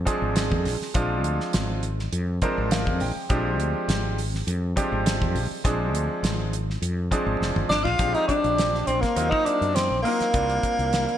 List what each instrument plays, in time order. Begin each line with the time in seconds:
0.05 grand piano F3 G#3 C4 D4 G#4, kick, closed hi-hat
0.22 fretless electric bass G#1
0.36 snare, closed hi-hat
0.51 fretless electric bass F2, kick
0.65 fretless electric bass A#1, snare, open hi-hat
0.82 snare
0.94 fretless electric bass A#1, grand piano F3 G#3 C4 D4 F4, kick, closed hi-hat
1.24 fretless electric bass D2, closed hi-hat
1.40 snare
1.53 fretless electric bass G#1, snare, closed hi-hat
1.83 closed hi-hat
1.99 snare
2.12 fretless electric bass F2, closed hi-hat
2.42 grand piano F3 G#3 C4 D4 A#4 C5, kick, closed hi-hat
2.58 fretless electric bass G#1
2.71 grand piano F5, snare, closed hi-hat
2.87 fretless electric bass F2, kick
3.00 fretless electric bass A#1, grand piano G5, open hi-hat
3.16 muted fretless electric bass stroke
3.29 fretless electric bass A#1, grand piano F3 G#3 C4 D4 G4, kick, closed hi-hat
3.59 fretless electric bass D2, closed hi-hat
3.88 fretless electric bass G#1, snare, closed hi-hat
4.18 open hi-hat
4.35 snare
4.47 fretless electric bass F2, closed hi-hat
4.76 grand piano F3 G#3 C4 D4 G4, kick, closed hi-hat
4.92 fretless electric bass G#1
5.06 snare, closed hi-hat
5.22 fretless electric bass F2, kick
5.35 fretless electric bass A#1, open hi-hat
5.51 muted fretless electric bass stroke
5.64 fretless electric bass A#1, grand piano F3 G#3 C4 D4 G#4, kick, closed hi-hat
5.93 fretless electric bass D2, closed hi-hat
6.23 fretless electric bass G#1, snare, closed hi-hat
6.53 closed hi-hat
6.70 snare
6.82 fretless electric bass F2, closed hi-hat
7.11 grand piano F3 G#3 C4 D4 G#4, kick, closed hi-hat
7.26 fretless electric bass G#1
7.41 fretless electric bass F1, snare
7.56 fretless electric bass G1, mid tom
7.70 fretless electric bass G#1, tenor saxophone D4, hollow-body jazz guitar D4, snare
7.84 fretless electric bass A#1, tenor saxophone F4, hollow-body jazz guitar F4, floor tom
7.99 fretless electric bass A#1, grand piano F3 G#3 C4 D4 G4, kick, closed hi-hat
8.14 tenor saxophone D#4, hollow-body jazz guitar D#4, closed hi-hat
8.28 tenor saxophone D4, hollow-body jazz guitar D4, muted fretless electric bass stroke, kick, closed hi-hat
8.44 fretless electric bass A#1, closed hi-hat
8.58 snare, closed hi-hat
8.75 snare
8.87 fretless electric bass A#1, tenor saxophone C4, hollow-body jazz guitar C4, closed hi-hat
9.01 tenor saxophone A#3, hollow-body jazz guitar A#3, kick, snare, closed hi-hat
9.16 fretless electric bass D#2, grand piano F#3 A#3 C4 D#4 F4, closed hi-hat
9.30 tenor saxophone D#4, hollow-body jazz guitar D#4, kick
9.45 hollow-body jazz guitar D4, tenor saxophone D4, muted fretless electric bass stroke, closed hi-hat
9.61 fretless electric bass F#2, closed hi-hat
9.75 hollow-body jazz guitar C4, tenor saxophone C4, snare, closed hi-hat
9.90 fretless electric bass A#1
10.02 grand piano F#3 A#3 C4 D#4 F4, tenor saxophone A#3, hollow-body jazz guitar A#3, open hi-hat
10.20 muted fretless electric bass stroke, snare, closed hi-hat
10.33 fretless electric bass C2, grand piano G3 A#3 C4 D4 F4, kick, closed hi-hat
10.50 closed hi-hat
10.63 kick, closed hi-hat
10.79 fretless electric bass C2, closed hi-hat
10.93 snare, closed hi-hat
11.09 closed hi-hat